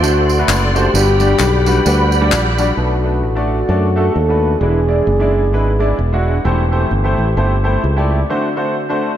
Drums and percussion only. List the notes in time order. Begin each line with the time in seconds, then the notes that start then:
0.04 tambourine
0.29 tambourine
0.49 clap, tambourine
0.76 tambourine
0.95 tambourine
1.20 tambourine
1.39 clap, tambourine
1.66 tambourine
1.86 tambourine
2.12 tambourine
2.32 clap, tambourine
2.58 tambourine